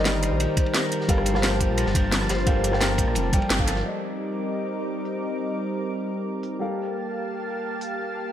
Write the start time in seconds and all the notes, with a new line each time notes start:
Already playing: G1 D#3 G3 G4 A#4 C5 D5
0.00 D#5
0.05 G3, snare, closed hi-hat, ride
0.22 C5, closed hi-hat, ride
0.32 A#1
0.40 G4, closed hi-hat, ride
0.57 G4, kick, closed hi-hat, ride
0.66 ride
0.74 A#4, snare, closed hi-hat, ride
0.92 G4, closed hi-hat, ride
1.00 snare
1.08 G1 F3 G3 A#3 G4 A4 A#4 F5 A5, kick, closed hi-hat, ride
1.18 cross-stick
1.26 C5, closed hi-hat, ride
1.34 G3 G4 A#4 F5 A5, cross-stick, snare
1.43 G4, snare, closed hi-hat, ride
1.52 snare
1.60 G4, kick, closed hi-hat, ride
1.70 A#1
1.78 A#4, closed hi-hat, ride
1.86 G1, snare
1.95 G4, kick, closed hi-hat, ride
2.12 G3, snare, closed hi-hat, ride
2.21 cross-stick, snare
2.29 G1 C5, snare, closed hi-hat, ride
2.39 snare
2.46 G1 G3 G4 A4 A#4 F5, kick, closed hi-hat, ride
2.64 G4, closed hi-hat, ride
2.71 G3 G4 A#4 F5 A5, cross-stick, snare
2.81 A#4, snare, closed hi-hat, ride
2.98 G4, kick, closed hi-hat, ride
3.08 A#1, cross-stick
3.15 F1 G3, closed hi-hat, ride
3.32 G1 G3 G4 A4 A#4 D5 G5, kick, closed hi-hat, ride
3.42 ride
3.50 G1 G4, snare, closed hi-hat
3.59 G3 G4 A4 A#4 F5, kick
3.67 A4, snare, closed hi-hat, ride
3.76 snare
3.83 G3 C4 D#4 G4 A#4 C5 D5 D#5 D6, crash
5.05 open hi-hat
6.43 open hi-hat
6.59 G3 A#3 G4 A4 A#4 F5 A5
7.81 open hi-hat